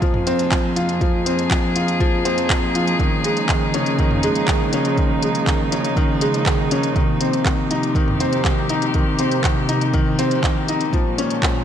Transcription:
Already playing: F2 F3 A#3 C4 D#4 F4 G#4
0.02 F3, kick, closed hi-hat
0.14 mid tom
0.27 C4, closed hi-hat
0.39 closed hi-hat
0.52 F3, kick, clap, closed hi-hat
0.76 F4, closed hi-hat
0.89 closed hi-hat
1.01 F3, kick, closed hi-hat
1.26 C4, closed hi-hat
1.39 closed hi-hat
1.51 F3, kick, clap, closed hi-hat
1.76 F4, closed hi-hat
1.88 closed hi-hat
2.00 F3, kick, closed hi-hat
2.25 C4, closed hi-hat
2.38 closed hi-hat
2.50 F3, kick, clap, closed hi-hat
2.75 F4, closed hi-hat
2.87 closed hi-hat
2.99 C#3 D#3, kick, closed hi-hat
3.24 G#3, closed hi-hat
3.37 closed hi-hat
3.49 D#3, kick, clap, closed hi-hat
3.74 C#4, closed hi-hat
3.86 closed hi-hat
3.99 D#3, kick, closed hi-hat
4.11 mid tom
4.23 G#3, closed hi-hat
4.35 closed hi-hat
4.48 D#3, kick, clap, closed hi-hat
4.73 C#4, closed hi-hat
4.85 closed hi-hat
4.97 D#3, kick, closed hi-hat
5.22 G#3, closed hi-hat
5.35 closed hi-hat
5.47 D#3, kick, clap, closed hi-hat
5.72 C#4, closed hi-hat
5.84 closed hi-hat
5.96 D#3, kick, closed hi-hat
6.21 G#3, closed hi-hat
6.34 closed hi-hat
6.46 D#3, kick, clap, closed hi-hat
6.71 C#4, closed hi-hat
6.83 closed hi-hat
6.96 C3 D#3, kick, closed hi-hat
7.21 C4 G4, closed hi-hat
7.33 closed hi-hat
7.45 D#3, kick, clap, closed hi-hat
7.71 D#4, closed hi-hat
7.83 closed hi-hat
7.95 D#3, kick, closed hi-hat
8.08 mid tom
8.20 C4, closed hi-hat
8.33 closed hi-hat
8.45 D#3, kick, clap, closed hi-hat
8.69 D#4, closed hi-hat
8.82 closed hi-hat
8.94 D#3, kick, closed hi-hat
9.19 C4, closed hi-hat
9.32 closed hi-hat
9.44 D#3, kick, clap, closed hi-hat
9.69 D#4, closed hi-hat
9.81 closed hi-hat
9.94 D#3, kick, closed hi-hat
10.19 C4, closed hi-hat
10.31 closed hi-hat
10.43 D#3, kick, clap, closed hi-hat
10.68 D#4, closed hi-hat
10.81 closed hi-hat
10.93 A#2 D#3 F3, kick, closed hi-hat
10.98 G#3
11.18 C#4, closed hi-hat
11.30 closed hi-hat
11.42 F3 C#4, kick, clap, closed hi-hat
11.58 F4

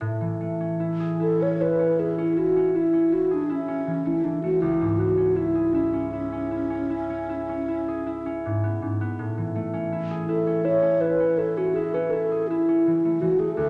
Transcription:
0.01 A2
0.21 E3
0.41 A3
0.60 C#4
0.80 E4
1.00 G#4
1.20 E4 A4
1.40 C#4 C#5
1.60 E4 B4
1.79 C#4
1.99 E4 G#4
2.18 C#4 E4
2.37 E4 F#4
2.56 C#4
2.75 E4
2.93 C#4
3.12 E4 F#4
3.31 D4 G#4
3.50 C#4 E4
3.68 C#4
3.87 E3
4.05 A3 E4
4.25 E3 D4
4.43 A3 F#4
4.61 C#2 E4
4.81 G#2
4.98 B3 F#4
5.17 C#4
5.36 E4
5.55 G#4
5.73 C#4 E4
5.94 C#4
6.13 E4
6.32 C#4
6.51 E4
6.70 C#4
6.90 E4
7.10 C#4
7.29 E4
7.49 C#4
7.68 E4
7.88 G#4
8.06 E4
8.26 C#4
8.46 G#2
8.63 B3
8.82 G#2
9.01 B3
9.19 A2
9.38 E3
9.55 A3
9.74 C#4
9.92 E4
10.11 G#4
10.29 E4 A4
10.47 C#4
10.65 E4 C#5
10.82 C#4
11.01 E4 B4
11.20 C#4
11.38 E4 A4
11.57 C#4 F#4
11.74 E4 G#4
11.94 C#4 B4
12.11 E4 A4
12.32 G#4
12.48 E4
12.68 C#4
12.87 E3
13.05 A3
13.21 E3 F#4
13.39 A3 G#4
13.56 D2 A4

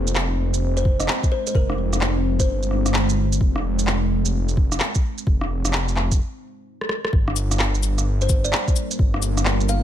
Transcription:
Already playing: F1 G#3 C4 D#4 F4 C5
0.07 shaker
0.15 clap
0.54 shaker
0.77 C5, shaker
0.85 kick
1.00 D#5, cross-stick, shaker
1.08 clap
1.23 kick, shaker
1.32 C5
1.47 C5, shaker
1.55 F1 A#4, kick
1.70 cross-stick
1.93 cross-stick, shaker
2.01 clap
2.39 C5, kick, shaker
2.47 G1
2.63 shaker
2.71 cross-stick
2.86 cross-stick, shaker
2.94 clap
3.09 shaker
3.32 shaker
3.41 F1, kick
3.56 cross-stick
3.79 shaker
3.87 clap
4.25 shaker
4.48 shaker
4.57 kick
4.72 cross-stick, shaker
4.80 clap
4.95 kick, shaker
5.18 shaker
5.27 F1, kick
5.41 cross-stick
5.65 cross-stick, shaker
5.73 clap
5.88 shaker
5.96 clap
6.12 kick, shaker
6.81 cross-stick
6.89 cross-stick
7.05 cross-stick
7.13 G1 G3 A#3 D4 F4 A#4, kick
7.28 cross-stick
7.36 cabasa
7.51 cross-stick, shaker
7.59 clap
7.75 shaker
7.83 cabasa
7.98 cross-stick, shaker
8.21 C5, shaker
8.29 kick, cabasa
8.44 D5, shaker
8.53 clap
8.68 kick, shaker
8.76 cabasa
8.91 shaker
8.99 G1, kick
9.14 cross-stick
9.22 cabasa
9.37 cross-stick, shaker
9.45 clap
9.60 shaker
9.69 F5, cabasa

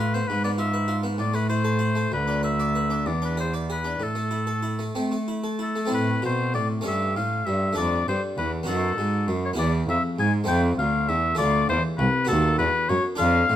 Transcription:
Already playing: A2
0.00 F4 B4
0.14 B3 C5
0.28 G#2 B4
0.44 B3 D5
0.58 F4 E5
0.74 B4
0.88 F4
1.03 B3
1.18 A2 D5
1.34 A3 B4
1.50 E4 C5
1.64 A4
1.79 E4
1.95 A3
2.12 D2 B4
2.27 D4
2.43 B4 E5
2.60 D5
2.75 B4
2.90 D4
3.06 E2 D5
3.22 D4 B4
3.37 G#4 C5
3.54 D5
3.70 G#4 B4
3.84 D4
4.00 A2 A4
4.15 A3
4.31 E4
4.47 A4
4.63 E4
4.79 A3
4.95 A3 C4
5.12 A3
5.28 E4
5.44 A4
5.59 E4 A4
5.76 A3
5.85 A3 C4 E4
5.90 A2
5.94 A2 B4
6.22 B2 C5
6.54 A2 D5
6.81 G2 A3 C#4 A4
6.86 G2 E5
7.16 A2 F5
7.46 G2 E5
7.73 A3 D4 A4
7.77 F2 D5
8.07 G2 C5
8.37 E2 B4
8.63 F#2 B3 D#4 F#4
8.68 F#2 A4
8.97 G#2
9.27 F#2
9.45 C#5
9.53 E2 B3 E4 G#4
9.58 E2 D5
9.88 F2 E5
10.17 G#2 G#5
10.44 A3 C4 A4 G5
10.48 F2
10.79 D2 F5
11.09 E2 E5
11.35 A3 F4 A4 D5
11.39 D2
11.69 E2 C5
11.99 C2 B4
12.25 B3 F#4 A4
12.29 D#2
12.59 E2 B4
12.89 F#2 C#5
13.16 D4 F4 A4 F5
13.20 F2
13.50 A2

